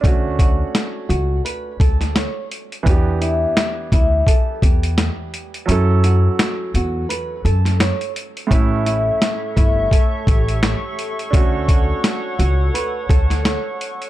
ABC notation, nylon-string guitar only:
X:1
M:4/4
L:1/8
Q:"Swing 16ths" 1/4=85
K:D
V:1 name="Nylon-string guitar"
z F2 F B A c z | z E2 E A G3 | z F2 F B A c z | z E2 E A G3 |
z F2 F B A c z |]